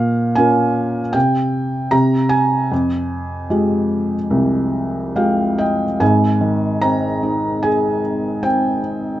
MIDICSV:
0, 0, Header, 1, 2, 480
1, 0, Start_track
1, 0, Key_signature, -4, "minor"
1, 0, Tempo, 782269
1, 1667, Time_signature, 4, 2, 24, 8
1, 2158, Tempo, 828729
1, 3603, Key_signature, -4, "major"
1, 4078, Tempo, 802139
1, 5495, End_track
2, 0, Start_track
2, 0, Title_t, "Felt piano"
2, 0, Program_c, 0, 0
2, 0, Control_c, 0, 64, 127
2, 0, Note_on_c, 0, 46, 65
2, 0, Note_on_c, 0, 77, 87
2, 202, Note_off_c, 0, 77, 0
2, 218, Note_on_c, 0, 80, 86
2, 227, Note_on_c, 0, 61, 48
2, 232, Note_on_c, 0, 65, 38
2, 234, Note_on_c, 0, 70, 47
2, 607, Note_off_c, 0, 61, 0
2, 611, Note_off_c, 0, 65, 0
2, 611, Note_off_c, 0, 70, 0
2, 680, Note_off_c, 0, 46, 0
2, 692, Note_on_c, 0, 79, 90
2, 700, Note_on_c, 0, 48, 51
2, 712, Note_off_c, 0, 80, 0
2, 714, Control_c, 0, 64, 0
2, 815, Control_c, 0, 64, 127
2, 1151, Note_off_c, 0, 79, 0
2, 1166, Note_off_c, 0, 48, 0
2, 1173, Note_on_c, 0, 82, 87
2, 1175, Note_on_c, 0, 48, 62
2, 1190, Control_c, 0, 64, 0
2, 1300, Control_c, 0, 64, 127
2, 1407, Note_on_c, 0, 80, 87
2, 1425, Note_off_c, 0, 82, 0
2, 1649, Note_off_c, 0, 48, 0
2, 1664, Note_on_c, 0, 41, 57
2, 1674, Control_c, 0, 64, 0
2, 1765, Control_c, 0, 64, 127
2, 2125, Note_off_c, 0, 80, 0
2, 2148, Note_on_c, 0, 56, 42
2, 2149, Note_on_c, 0, 65, 36
2, 2154, Note_on_c, 0, 67, 47
2, 2526, Note_off_c, 0, 56, 0
2, 2526, Note_off_c, 0, 65, 0
2, 2530, Note_off_c, 0, 67, 0
2, 2614, Note_on_c, 0, 36, 55
2, 3108, Note_on_c, 0, 56, 36
2, 3109, Note_on_c, 0, 77, 62
2, 3112, Note_on_c, 0, 79, 54
2, 3114, Note_on_c, 0, 65, 33
2, 3116, Note_on_c, 0, 67, 44
2, 3344, Note_off_c, 0, 79, 0
2, 3355, Note_on_c, 0, 79, 62
2, 3357, Note_on_c, 0, 75, 48
2, 3367, Note_off_c, 0, 77, 0
2, 3501, Note_off_c, 0, 56, 0
2, 3505, Note_off_c, 0, 65, 0
2, 3506, Note_off_c, 0, 67, 0
2, 3574, Note_off_c, 0, 36, 0
2, 3578, Note_off_c, 0, 41, 0
2, 3583, Note_off_c, 0, 75, 0
2, 3595, Note_on_c, 0, 32, 54
2, 3598, Note_on_c, 0, 44, 54
2, 3598, Note_on_c, 0, 80, 76
2, 3606, Note_off_c, 0, 79, 0
2, 3610, Control_c, 0, 64, 0
2, 3722, Control_c, 0, 64, 127
2, 3833, Note_on_c, 0, 51, 49
2, 4068, Note_on_c, 0, 82, 80
2, 4070, Note_on_c, 0, 60, 51
2, 4088, Note_off_c, 0, 80, 0
2, 4316, Note_on_c, 0, 63, 50
2, 4554, Note_on_c, 0, 80, 76
2, 4557, Note_on_c, 0, 68, 53
2, 4573, Note_off_c, 0, 82, 0
2, 4776, Note_off_c, 0, 51, 0
2, 5015, Note_off_c, 0, 60, 0
2, 5033, Note_on_c, 0, 60, 56
2, 5033, Note_on_c, 0, 79, 78
2, 5052, Note_off_c, 0, 80, 0
2, 5253, Note_off_c, 0, 63, 0
2, 5488, Note_off_c, 0, 79, 0
2, 5489, Note_off_c, 0, 32, 0
2, 5490, Note_off_c, 0, 44, 0
2, 5490, Note_off_c, 0, 68, 0
2, 5495, Note_off_c, 0, 60, 0
2, 5495, End_track
0, 0, End_of_file